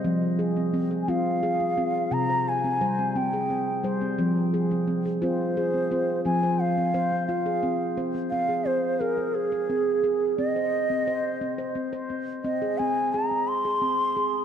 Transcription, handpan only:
\new Staff \with { instrumentName = "Handpan" } { \time 6/8 \key f \minor \tempo 4. = 58 << { f4 c'8 f'4 c'8 | c4 g8 c'4 g8 | f4 c'8 f'4 c'8 | f4 c'8 f'4 c'8 |
r2. | r2. | r2. | } \\ { c'8 aes'16 c'8 aes'16 c'8 aes'16 c'16 f'8 | c'16 c''8 c'16 c''16 c'8 aes'16 c'8 c''16 c'16 | c'8 aes'16 c'8 aes'16 c'8 aes'16 c'16 f'8 | c'16 c''8 c'16 c''16 c'8 aes'16 c'8 c''16 c'16 |
c'16 aes'16 c'8 aes'16 c'8 aes'16 c'8 aes'8 | c'16 c''8 c'16 c''8 c'16 c''16 c'16 c''16 c'8 | c'16 aes'16 c'8 aes'16 c'8 aes'16 c'8 aes'8 | } >> }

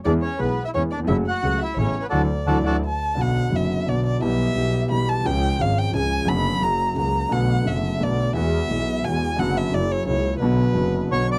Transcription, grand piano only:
\new Staff \with { instrumentName = "Grand piano" } { \clef bass \time 3/4 \key d \major \tempo 4 = 174 <e, e gis b gis'>8 r8 <b,, b, e gis b gis'>8 r8 <e, e gis b gis'>8 r32 ees,32 e,32 f,32 | <fis, cis fis a fis'>8 r8 <cis, cis fis a fis'>8 r8 <a,, a, cis a b e'>8 r8 | <d e fis>8 r8 <d e fis>8 <d e fis>8 r4 | \key b \minor <b,, b, d fis b fis'>4 <fis,, fis, d fis b fis'>4 <b,, b, d fis b fis'>4 |
<b,, b, e g b g'>4 <b,, b, e g b g'>4 <b,, b, e g b g'>4 | <cis, cis eis gis cis' gis'>4 <gis,, gis, eis gis cis' gis'>4 <cis, cis eis gis cis' gis'>4 | <fis, d fis b fis'>4 <fis, cis fis ais fis'>4 <cis, cis fis ais fis'>4 | <b,, b, d a b fis'>4 <fis,, fis, d a b fis'>4 <b,, b, d a b fis'>4 |
<e, e gis b fis'>4 <b,, b, e gis b fis'>4 <e, e gis b fis'>4 | <fis, d fis b fis'>4 <fis, cis fis ais e'>4 <cis, cis fis ais e'>4 | <b,, b, d fis b fis'>4 <fis,, fis, d fis b fis'>4 <b,, b, d fis b fis'>4 | }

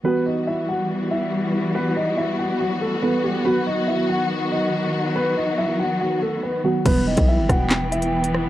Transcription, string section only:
\new Staff \with { instrumentName = "String section" } { \clef bass \time 4/4 \key e \minor \tempo 4 = 141 << { <b fis'>1~ | <b fis'>1~ | <b fis'>1~ | <b fis'>1 |
b1 | } \\ { <e g>1~ | <e g>1 | <dis fis>1~ | <dis fis>1 |
e1 | } >> }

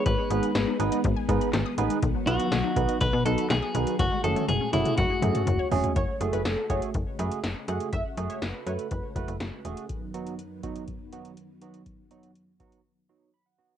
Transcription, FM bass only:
\new Staff \with { instrumentName = "FM bass" } { \clef bass \time 4/4 \key fis \dorian \tempo 4 = 122 gis,,16 r16 gis,,16 r16 gis,,16 r16 gis,,16 r16 gis,,16 r16 gis,16 r16 gis,,16 r16 a,,16 r16 | b,,16 r16 b,,16 r16 b,,16 r16 b,,16 r16 b,,16 b,16 b,,16 r16 b,,16 r16 b,,16 r16 | fis,,16 r16 fis,,16 r16 fis,,16 r16 fis,,16 r16 fis,,16 r16 fis,16 r16 fis,,16 r16 e,,16 r16 | fis,,16 r16 fis,,16 fis,,16 fis,,16 r16 fis,,16 r16 fis,,16 r16 fis,16 r16 fis,,16 r16 fis,16 r16 |
fis,,16 r16 fis,16 r16 fis,,16 r16 fis,16 r16 fis,,16 r16 fis,,16 fis,,16 fis,,16 r16 e,,16 r16 | r1 | r1 | }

